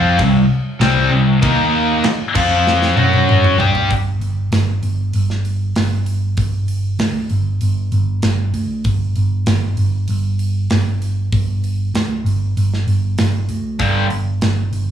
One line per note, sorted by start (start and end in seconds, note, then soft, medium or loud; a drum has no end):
0.00 0.17 F2 medium
0.00 0.18 F3 medium
0.00 0.19 C4 medium
0.00 0.19 F4 loud
0.19 0.48 C2 medium
0.19 0.44 C3 medium
0.19 0.44 G3 medium
0.19 kick loud
0.19 crash medium
0.80 1.09 C2 medium
0.80 1.11 C3 medium
0.80 1.12 G3 loud
0.80 1.12 C4 loud
0.80 snare loud
0.80 crash medium
1.11 1.40 C2 medium
1.11 1.37 C3 medium
1.11 1.37 G3 medium
1.42 2.01 D#2 medium
1.42 2.03 D#3 medium
1.42 2.04 A#3 medium
1.42 2.04 D#4 loud
1.42 kick loud
1.42 crash medium
2.04 muted picked electric bass stroke soft
2.04 muted overdriven electric guitar stroke medium
2.04 muted distorted electric guitar stroke medium
2.04 snare loud
2.04 crash medium
2.35 2.93 F2 medium
2.35 2.96 F3 medium
2.35 2.97 C4 medium
2.35 2.97 F4 loud
2.35 kick loud
2.35 crash loud
2.67 snare medium
2.82 snare medium
2.96 3.54 F#2 medium
2.96 3.58 F#3 medium
2.96 3.58 C#4 medium
2.96 3.58 F#4 loud
2.96 high tom medium
3.13 high tom medium
3.29 mid tom medium
3.44 mid tom medium
3.58 3.87 G2 medium
3.58 3.89 G3 medium
3.58 3.89 D4 medium
3.58 3.90 G4 loud
3.58 floor tom loud
3.75 floor tom medium
3.90 4.19 G1 medium
3.90 kick loud
3.90 open hi-hat medium
4.21 4.49 G1 medium
4.21 open hi-hat medium
4.52 4.80 G1 medium
4.52 snare loud
4.52 open hi-hat medium
4.83 5.11 G1 medium
4.83 open hi-hat medium
5.13 5.72 G1 medium
5.13 open hi-hat medium
5.30 snare soft
5.45 open hi-hat medium
5.76 6.34 G1 medium
5.76 snare loud
5.76 open hi-hat medium
6.06 open hi-hat medium
6.37 6.95 G1 medium
6.37 kick loud
6.37 open hi-hat medium
6.68 open hi-hat medium
6.99 7.28 D2 medium
6.99 snare medium
6.99 open hi-hat medium
7.29 7.59 G1 medium
7.29 open hi-hat soft
7.61 7.90 G1 medium
7.61 open hi-hat medium
7.92 8.21 G1 medium
7.92 open hi-hat soft
8.22 8.51 G1 medium
8.22 snare loud
8.22 open hi-hat medium
8.54 8.82 D2 medium
8.54 open hi-hat soft
8.84 9.13 G1 medium
8.84 kick loud
8.84 open hi-hat medium
9.16 9.45 G1 medium
9.16 open hi-hat soft
9.46 9.75 G1 medium
9.46 snare loud
9.46 open hi-hat medium
9.77 10.06 G1 medium
9.77 open hi-hat soft
10.08 10.67 G1 medium
10.08 open hi-hat medium
10.39 open hi-hat medium
10.70 11.28 G1 medium
10.70 snare loud
10.70 open hi-hat medium
11.02 open hi-hat medium
11.32 11.90 G1 medium
11.32 kick loud
11.32 open hi-hat medium
11.64 open hi-hat medium
11.94 12.23 D2 medium
11.94 snare loud
11.94 open hi-hat medium
12.24 12.53 G1 medium
12.24 open hi-hat soft
12.57 12.85 G1 medium
12.57 open hi-hat medium
12.73 snare soft
12.87 13.15 G1 medium
12.87 open hi-hat medium
13.18 13.47 G1 medium
13.18 snare loud
13.18 open hi-hat medium
13.49 13.78 D2 medium
13.49 open hi-hat soft
13.79 14.08 G1 medium
13.79 14.04 G2 medium
13.79 14.04 D3 medium
13.79 14.05 G3 medium
13.79 kick loud
13.79 open hi-hat medium
14.10 14.40 G1 medium
14.10 open hi-hat medium
14.41 14.71 G1 medium
14.41 snare loud
14.41 open hi-hat medium
14.73 14.91 G1 medium
14.73 open hi-hat soft